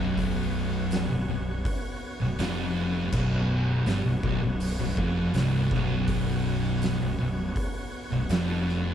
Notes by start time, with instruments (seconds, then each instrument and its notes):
Already playing: fingered electric bass B0, distorted electric guitar B1, tonewheel organ B3 F#4 C#5
0.18 kick, open hi-hat
0.91 snare, open hi-hat
1.11 fingered electric bass B0, distorted electric guitar B1
1.29 fingered electric bass B0, distorted electric guitar B1
1.65 kick, open hi-hat
2.21 fingered electric bass B0, distorted electric guitar B1
2.39 fingered electric bass F1, distorted electric guitar F2, snare, open hi-hat
3.12 fingered electric bass B0, distorted electric guitar B1, kick, crash
3.86 fingered electric bass G1, distorted electric guitar G2, snare, open hi-hat
4.03 fingered electric bass B0, distorted electric guitar B1
4.23 fingered electric bass B0, distorted electric guitar B1, kick
4.42 fingered electric bass B0, distorted electric guitar B1
4.60 open hi-hat
4.79 fingered electric bass B0, distorted electric guitar B1
4.97 fingered electric bass F1, distorted electric guitar F2, kick
5.34 fingered electric bass C1, distorted electric guitar C2, snare, open hi-hat
5.71 fingered electric bass B0, distorted electric guitar B1, kick, snare
6.08 kick, open hi-hat
6.82 snare, open hi-hat
7.01 fingered electric bass B0, distorted electric guitar B1
7.20 fingered electric bass B0, distorted electric guitar B1
7.56 kick, open hi-hat
8.11 fingered electric bass B0, distorted electric guitar B1
8.29 fingered electric bass F1, distorted electric guitar F2, snare, open hi-hat
8.69 snare